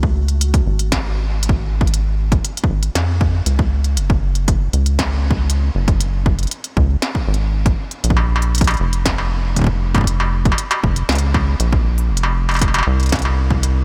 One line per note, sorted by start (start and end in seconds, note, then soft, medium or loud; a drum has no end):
0.00 0.62 C#2 loud
0.00 kick loud
0.28 closed hi-hat soft
0.41 closed hi-hat medium
0.54 kick loud
0.54 closed hi-hat medium
0.67 2.40 G#1 medium
0.79 closed hi-hat medium
0.92 kick loud
0.92 snare loud
0.92 closed hi-hat medium
1.43 closed hi-hat medium
1.49 kick loud
1.81 kick loud
1.87 closed hi-hat soft
1.94 closed hi-hat medium
2.32 kick loud
2.32 closed hi-hat soft
2.45 closed hi-hat medium
2.57 closed hi-hat medium
2.64 kick loud
2.70 2.90 G#1 medium
2.83 closed hi-hat medium
2.95 3.42 F2 medium
2.95 snare loud
2.95 closed hi-hat medium
3.21 kick loud
3.46 3.99 C#2 medium
3.46 closed hi-hat medium
3.59 kick loud
3.84 closed hi-hat soft
3.97 4.69 F#1 medium
3.97 closed hi-hat medium
4.10 kick loud
4.35 closed hi-hat soft
4.48 kick loud
4.48 closed hi-hat medium
4.73 5.71 C#2 medium
4.73 closed hi-hat soft
4.86 closed hi-hat medium
4.99 kick loud
4.99 snare loud
4.99 closed hi-hat medium
5.31 kick loud
5.50 closed hi-hat medium
5.75 6.47 F#1 medium
5.88 kick loud
5.88 closed hi-hat soft
6.01 closed hi-hat medium
6.26 kick loud
6.39 closed hi-hat soft
6.43 closed hi-hat soft
6.47 closed hi-hat soft
6.51 closed hi-hat medium
6.64 closed hi-hat soft
6.77 6.97 C#2 medium
6.77 kick loud
7.02 snare loud
7.02 closed hi-hat medium
7.15 kick loud
7.28 7.74 G#1 medium
7.34 closed hi-hat soft
7.66 kick loud
7.66 closed hi-hat soft
7.91 closed hi-hat soft
8.04 8.76 A#1 medium
8.04 closed hi-hat medium
8.10 kick loud
8.17 struck metal soft
8.36 struck metal soft
8.42 closed hi-hat soft
8.55 closed hi-hat medium
8.58 kick loud
8.58 closed hi-hat medium
8.64 closed hi-hat soft
8.67 closed hi-hat soft
8.67 struck metal medium
8.74 closed hi-hat soft
8.77 10.54 F1 medium
8.77 closed hi-hat soft
8.93 closed hi-hat soft
9.06 kick loud
9.06 snare loud
9.06 closed hi-hat medium
9.18 struck metal soft
9.56 kick soft
9.56 closed hi-hat medium
9.59 kick medium
9.62 kick medium
9.64 kick medium
9.67 kick loud
9.95 kick loud
9.95 closed hi-hat soft
9.95 struck metal soft
9.98 kick medium
10.01 kick medium
10.04 kick medium
10.04 closed hi-hat medium
10.20 struck metal medium
10.45 kick loud
10.45 closed hi-hat soft
10.52 struck metal soft
10.58 closed hi-hat medium
10.71 closed hi-hat soft
10.71 struck metal medium
10.84 11.03 F1 medium
10.84 kick medium
10.96 closed hi-hat soft
11.09 11.55 C#2 medium
11.09 snare loud
11.09 closed hi-hat soft
11.12 closed hi-hat soft
11.15 closed hi-hat soft
11.18 closed hi-hat medium
11.34 kick loud
11.34 struck metal medium
11.60 12.12 A#1 medium
11.60 closed hi-hat medium
11.73 kick loud
11.98 closed hi-hat soft
12.11 12.82 F1 medium
12.17 closed hi-hat medium
12.23 struck metal medium
12.49 closed hi-hat soft
12.49 struck metal medium
12.51 closed hi-hat soft
12.54 closed hi-hat soft
12.54 struck metal soft
12.56 closed hi-hat soft
12.59 kick loud
12.59 closed hi-hat soft
12.62 closed hi-hat medium
12.62 struck metal soft
12.68 struck metal soft
12.74 closed hi-hat soft
12.74 struck metal medium
12.78 struck metal medium
12.83 struck metal soft
12.87 13.84 C2 medium
13.00 closed hi-hat soft
13.03 closed hi-hat soft
13.06 closed hi-hat soft
13.09 kick loud
13.09 snare loud
13.09 closed hi-hat soft
13.12 closed hi-hat medium
13.16 closed hi-hat soft
13.19 closed hi-hat soft
13.22 closed hi-hat soft
13.22 struck metal medium
13.50 kick medium
13.63 closed hi-hat medium